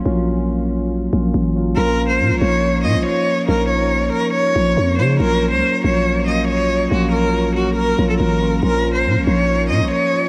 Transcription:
<<
  \new Staff \with { instrumentName = "Cello" } { \time 4/4 \key bes \minor \tempo 4 = 140 r1 | bes'8. c''8. des''4 ees''8 des''4 | bes'8 des''4 bes'8 des''4. c''8 | bes'8. c''8. des''4 ees''8 des''4 |
ges'8 bes'4 ges'8 bes'8. a'16 bes'4 | bes'8. c''8. des''4 ees''8 des''4 | }
  \new Staff \with { instrumentName = "Tine electric piano" } { \time 4/4 \key bes \minor <ges bes des' f'>4. r4 <ges bes des' f'>8. r16 <ges bes des' f'>8 | <f bes des' f'>4 r8 <f bes des' ees'>8. r16 <f bes des' f'>4 r8 | <f bes des' ees'>4. r4 <f bes des' f'>8. r16 <f bes des' ees'>8 | <ges bes des' f'>4 r8 <ges bes des' f'>8. r16 <ges bes des' f'>4 r8 |
<ges bes des' f'>4. r4 <ges bes des' f'>8. r16 <ges bes des' f'>8 | <f bes des' f'>4 r8 <f bes des' ees'>8. r16 <f bes des' f'>4 r8 | }
  \new Staff \with { instrumentName = "808-style bass" } { \clef bass \time 4/4 \key bes \minor bes,,2~ bes,,8 bes,,8 a,,4 | bes,,4 bes,16 bes,,16 bes,,4 bes,16 bes,,16 r4 | bes,,4. r4 bes,,8 f,8 des8 | bes,,8. des,16 r8 bes,,2~ bes,,8 |
bes,,2~ bes,,8 bes,,8 a,,4 | bes,,4 bes,16 bes,,16 bes,,4 bes,16 bes,,16 r4 | }
>>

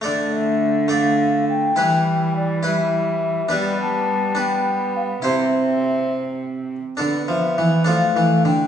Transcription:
<<
  \new Staff \with { instrumentName = "Flute" } { \time 6/8 \key d \dorian \tempo 4. = 69 d''8 e''4 f''4 g''8~ | g''4 d''8 e''4. | d''8 a''4 g''4 f''8 | e''4. r4. |
d''8 e''4 f''4 g''8 | }
  \new Staff \with { instrumentName = "Harpsichord" } { \time 6/8 \key d \dorian <a a' d''>4. <a a' d''>4. | <e' b'>4. <e' b'>4. | <d' b'>4. <d' b'>4. | <e' c''>2. |
<d' a'>4. <d' a'>4. | }
  \new Staff \with { instrumentName = "Harpsichord" } { \clef bass \time 6/8 \key d \dorian d2. | e2. | g2. | c2~ c8 r8 |
d8 f8 e8 f8 e8 d8 | }
  \new Staff \with { instrumentName = "Viola" } { \time 6/8 \key d \dorian a4. a4. | g4. g4. | b4. b4. | c'2~ c'8 r8 |
b4. a4. | }
  \new Staff \with { instrumentName = "Cello" } { \clef bass \time 6/8 \key d \dorian d2. | e2. | g2. | c2~ c8 r8 |
d8 f8 e8 f8 e8 d8 | }
>>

